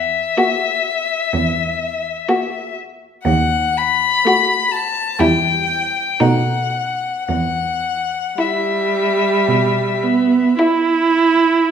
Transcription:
0.00 0.19 E2 soft
0.00 2.74 E5 soft
0.37 1.10 A#3 soft
0.37 1.10 F#4 soft
1.33 2.10 E2 soft
2.28 3.00 A#3 soft
2.28 3.00 F#4 soft
3.24 4.07 D#2 soft
3.24 3.79 F#5 medium
3.77 4.73 B5 medium
4.25 4.96 A3 soft
4.25 4.97 F#4 soft
4.72 5.21 A5 medium
5.19 6.00 E2 soft
5.19 5.95 G3 soft
5.19 5.96 E4 soft
5.19 6.23 G5 medium
6.20 7.08 B2 soft
6.20 7.02 A3 soft
6.20 7.02 D#4 soft
6.20 7.28 F#5 soft
7.28 8.18 E2 soft
7.28 8.41 F#5 medium
8.38 10.04 G3 soft
8.38 9.22 E4 soft
8.38 10.59 E5 soft
9.48 10.37 B2 soft
10.03 10.58 B3 soft
10.59 11.52 E4 soft
10.59 11.71 E4 soft

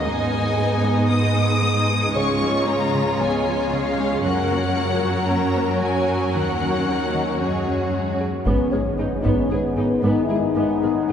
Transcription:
0.00 2.15 G#2 soft
0.00 4.25 G#3 medium
0.00 2.15 D#4 medium
0.00 2.15 D#5 soft
0.00 2.15 D#5 medium
0.00 0.26 F6 soft
0.04 4.21 G#3 soft
0.04 0.20 G#3 medium
0.04 2.15 B3 medium
0.04 2.15 B3 soft
0.04 2.11 D#4 soft
0.04 1.06 G#5 medium
0.31 0.47 B3 soft
0.57 0.73 G#4 soft
0.84 1.00 G#3 medium
0.84 2.37 D#5 soft
1.10 1.26 B3 soft
1.10 2.13 D#6 medium
1.36 1.52 B3 soft
1.63 1.78 G#3 medium
1.90 2.05 G#4 soft
2.14 4.21 C#2 soft
2.14 2.31 C#3 medium
2.14 6.32 C#4 soft
2.14 4.25 C#4 medium
2.14 4.25 F4 medium
2.14 4.25 F4 soft
2.14 4.21 C#5 soft
2.14 8.46 C#5 medium
2.14 3.69 C#5 soft
2.14 2.67 C#6 medium
2.42 2.58 F3 soft
2.68 2.84 C#4 medium
2.68 3.20 A#5 medium
2.95 3.10 C#3 medium
3.20 3.36 F3 medium
3.20 4.74 B3 soft
3.20 4.74 G#4 soft
3.20 3.73 G#5 medium
3.48 3.63 F3 soft
3.72 3.89 C#3 medium
3.72 4.25 F5 medium
4.00 4.15 C#4 soft
4.25 6.36 F#2 soft
4.25 8.46 F#3 medium
4.25 8.26 F#3 soft
4.25 4.42 F#3 medium
4.25 8.22 F#4 soft
4.25 8.46 F#4 medium
4.25 7.37 A#4 soft
4.25 7.41 A#4 medium
4.25 5.28 F#5 medium
4.52 4.68 A#3 soft
4.52 6.06 A#4 soft
4.78 4.94 F#4 medium
5.05 5.20 F#3 medium
5.30 5.47 A#3 soft
5.30 5.83 A#5 medium
5.57 5.72 A#3 soft
5.57 7.11 C#5 soft
5.82 5.99 F#3 medium
5.82 6.34 G#5 medium
6.09 6.25 F#4 soft
6.36 7.41 D#2 soft
6.36 6.52 D#3 medium
6.36 8.23 C#4 soft
6.36 7.41 F#5 medium
6.63 6.78 F#3 soft
6.89 7.04 C#4 soft
7.14 7.31 D#3 medium
7.14 8.42 D#5 soft
7.40 8.26 F#2 soft
7.40 8.45 G#3 soft
7.40 7.57 C#4 soft
7.40 8.26 G#4 soft
7.40 7.92 C#5 soft
7.68 7.83 C#4 soft
7.94 8.10 F#3 medium
8.21 8.36 G#4 soft
8.45 8.54 G#2 soft
8.45 11.12 D#3 medium
8.45 11.12 G#3 medium
8.45 8.63 G#3 medium
8.45 8.71 B3 soft
8.45 11.12 B3 medium
8.45 8.95 C#4 medium
8.45 11.12 G#4 medium
8.45 taiko soft
8.72 8.80 G#2 soft
8.72 8.89 B3 medium
8.72 8.81 G#4 soft
8.72 10.26 C#5 soft
8.98 9.06 G#2 soft
8.98 9.17 B3 medium
8.98 9.07 D#4 soft
8.98 9.15 G#4 soft
9.19 9.35 D#4 medium
9.24 9.33 G#2 medium
9.24 9.41 G#3 medium
9.24 9.49 B3 soft
9.24 taiko soft
9.35 9.52 C#4 medium
9.51 9.59 G#2 soft
9.51 10.04 B3 medium
9.51 9.60 G#4 soft
9.51 9.68 G#4 medium
9.77 9.85 G#2 soft
9.77 9.86 D#4 soft
9.77 9.94 G#4 soft
10.03 10.11 G#2 medium
10.03 10.20 G#3 medium
10.03 10.28 B3 soft
10.03 10.21 D#4 medium
10.23 10.40 E4 medium
10.30 10.38 G#2 soft
10.30 10.38 G#4 soft
10.30 10.47 G#4 soft
10.38 11.12 D#4 medium
10.56 10.64 G#2 soft
10.56 10.73 G#3 medium
10.56 10.81 B3 soft
10.56 11.12 D#4 soft
10.56 11.12 D#5 soft
10.83 10.91 G#2 soft
10.83 10.99 B3 soft
10.83 10.91 G#4 soft
11.09 11.12 G#2 soft
11.09 11.12 D#4 soft

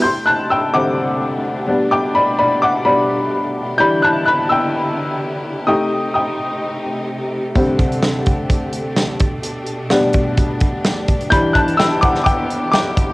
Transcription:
0.02 1.67 C3 medium
0.02 3.76 A3 soft
0.02 3.76 D4 medium
0.02 11.29 G4 medium
0.02 0.26 C6 medium
0.02 0.25 G6 medium
0.26 0.32 A5 medium
0.26 0.31 F#6 medium
0.50 0.73 G5 medium
0.50 0.75 E6 medium
0.73 1.41 D3 soft
0.73 1.41 G3 soft
0.73 1.41 C4 soft
0.73 1.88 F#5 medium
0.73 1.90 D6 medium
1.67 3.78 B2 medium
1.67 2.84 G3 soft
1.67 2.84 B3 soft
1.67 2.85 D4 soft
1.91 2.14 G5 medium
1.91 2.16 D6 medium
2.15 2.37 D5 soft
2.15 2.37 B5 medium
2.39 2.61 D5 medium
2.39 2.63 B5 medium
2.62 2.69 F#5 medium
2.62 2.67 D6 medium
2.85 3.07 G3 soft
2.85 3.07 B3 soft
2.85 3.07 D4 soft
2.85 3.30 D5 soft
2.85 3.29 B5 medium
3.78 5.67 D3 medium
3.78 4.11 E3 soft
3.78 4.11 G3 soft
3.78 5.67 B3 medium
3.78 4.12 D4 medium
3.78 5.67 E4 medium
3.78 4.02 B5 medium
3.78 4.01 G6 medium
4.02 4.26 A5 medium
4.02 4.24 F#6 medium
4.26 4.33 B5 medium
4.26 4.31 F#6 medium
4.49 5.65 G5 medium
4.49 5.71 E6 medium
5.67 6.34 C3 soft
5.67 9.17 C3 medium
5.67 6.35 A3 soft
5.67 11.28 A3 medium
5.67 6.35 D#4 soft
5.67 7.54 D#4 medium
5.67 6.12 G5 medium
5.67 6.13 D#6 medium
6.14 6.82 G5 soft
6.14 6.81 D#6 medium
7.55 9.16 D3 soft
7.55 9.17 G3 soft
7.55 9.17 C4 soft
7.55 13.13 D4 medium
7.55 kick medium
7.55 closed hi-hat medium
7.79 kick medium
7.79 closed hi-hat soft
7.92 closed hi-hat soft
8.02 snare medium
8.02 closed hi-hat medium
8.26 kick medium
8.26 closed hi-hat soft
8.50 kick medium
8.50 closed hi-hat medium
8.73 closed hi-hat medium
8.96 snare medium
8.96 closed hi-hat medium
9.19 11.29 B2 medium
9.19 kick medium
9.19 closed hi-hat medium
9.43 closed hi-hat medium
9.66 closed hi-hat soft
9.90 10.22 G3 soft
9.90 10.22 B3 soft
9.90 10.23 D4 soft
9.90 snare medium
9.90 closed hi-hat medium
10.13 kick medium
10.13 closed hi-hat medium
10.37 kick medium
10.37 closed hi-hat medium
10.60 kick medium
10.60 closed hi-hat medium
10.85 snare loud
10.85 closed hi-hat medium
11.08 kick medium
11.08 closed hi-hat medium
11.21 closed hi-hat soft
11.30 13.13 E3 medium
11.30 11.99 E3 soft
11.30 11.99 G3 soft
11.30 13.13 B3 medium
11.30 11.99 D4 soft
11.30 13.13 G4 medium
11.30 11.54 B5 medium
11.30 11.55 G6 medium
11.30 kick medium
11.30 closed hi-hat medium
11.53 11.77 A5 medium
11.53 11.79 F#6 medium
11.53 kick medium
11.53 closed hi-hat soft
11.68 closed hi-hat soft
11.77 12.01 G5 medium
11.77 12.02 E6 medium
11.77 snare medium
11.77 closed hi-hat medium
12.01 12.25 F#5 soft
12.01 12.23 D6 medium
12.01 kick medium
12.01 closed hi-hat soft
12.15 snare soft
12.24 12.70 G5 medium
12.24 12.69 D6 medium
12.24 kick medium
12.24 closed hi-hat medium
12.51 closed hi-hat medium
12.72 13.13 G5 medium
12.72 13.13 D6 medium
12.72 snare medium
12.72 closed hi-hat medium
12.97 kick medium
12.97 closed hi-hat medium

